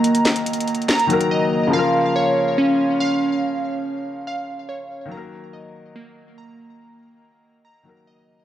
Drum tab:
HH |x--x--x--x--x-x-x-x-x-x-x--x--x--x--------------|------------------------------------------------|------------------------------------------------|------------------------------------------------|
CP |------x-----------------x-----------------------|------------------------------------------------|------------------------------------------------|------------------------------------------------|
SD |------o-----------------o-----------------------|------------------------------------------------|------------------------------------------------|------------------------------------------------|

HH |------------------------------------------------|
CP |------------------------------------------------|
SD |------------------------------------------------|